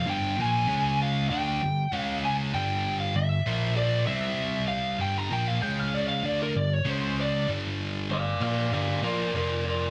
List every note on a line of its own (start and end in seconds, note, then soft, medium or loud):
0.06 0.36 G2 loud
0.06 0.36 D3 loud
0.06 0.36 G3 loud
0.06 0.39 G5 loud
0.38 0.67 A#2 medium
0.38 0.67 F3 medium
0.38 0.68 A#3 loud
0.42 1.02 G#5 loud
0.67 1.28 C#3 loud
0.67 1.28 G#3 loud
0.67 1.28 C#4 loud
1.02 1.29 F5 medium
1.29 1.59 D3 loud
1.29 1.60 A3 loud
1.29 1.60 D4 loud
1.29 1.96 G5 medium
1.62 1.85 G2 medium
1.62 1.86 D3 medium
1.92 2.52 C#3 medium
1.92 2.52 G#3 loud
1.92 2.52 C#4 loud
1.96 2.24 F5 medium
2.25 2.33 G#5 medium
2.53 3.13 G2 loud
2.53 3.14 D3 loud
2.53 3.14 G3 loud
2.53 3.00 G5 loud
3.00 3.15 F5 medium
3.15 3.39 G2 medium
3.15 3.39 D3 medium
3.15 3.72 E5 medium
3.46 4.06 A#2 medium
3.46 4.06 F3 loud
3.46 4.07 A#3 loud
3.77 4.05 D5 medium
4.07 4.98 C3 medium
4.07 4.99 G3 loud
4.07 4.99 C4 medium
4.07 4.64 E5 medium
4.68 4.97 F5 medium
4.98 5.29 G2 medium
4.98 5.29 D3 medium
4.98 5.29 G3 loud
4.98 5.15 G5 medium
5.18 5.31 A#5 medium
5.30 5.60 A#2 medium
5.30 5.60 F3 medium
5.30 5.61 A#3 medium
5.30 5.48 G5 medium
5.48 5.62 F5 medium
5.62 6.22 C#3 medium
5.62 6.23 G#3 medium
5.62 6.23 C#4 loud
5.62 5.79 G5 medium
5.79 5.93 F5 medium
5.94 6.08 D5 medium
6.08 6.25 F5 medium
6.24 6.53 D3 loud
6.24 6.54 A3 medium
6.24 6.54 D4 loud
6.24 6.39 D5 medium
6.42 6.55 A#4 medium
6.55 6.79 G2 medium
6.55 6.79 D3 medium
6.55 6.73 D5 medium
6.73 6.90 C#5 medium
6.85 7.46 C#3 medium
6.85 7.46 G#3 medium
6.85 7.47 C#4 loud
6.90 7.17 C5 medium
7.21 7.48 D5 loud
7.47 8.08 G2 medium
7.47 8.08 D3 loud
7.47 8.09 G3 medium
8.10 8.34 G2 medium
8.10 8.34 D3 medium
8.10 8.41 D5 medium
8.10 8.41 F5 loud
8.41 8.70 A#2 medium
8.41 8.70 F3 medium
8.41 8.71 A#3 medium
8.41 8.70 D5 medium
8.41 8.71 F5 medium
8.72 9.01 G2 medium
8.72 9.02 D3 loud
8.72 9.02 G3 loud
8.72 9.01 D5 medium
8.72 9.02 F5 medium
9.02 9.32 A#2 medium
9.02 9.32 F3 medium
9.02 9.33 A#3 loud
9.02 9.31 A#4 medium
9.02 9.33 D5 medium
9.33 9.90 F2 medium
9.33 9.90 C3 loud
9.33 9.90 F3 loud
9.33 9.63 A#4 medium
9.33 9.64 D5 medium
9.68 9.90 A#4 medium
9.68 9.90 D5 medium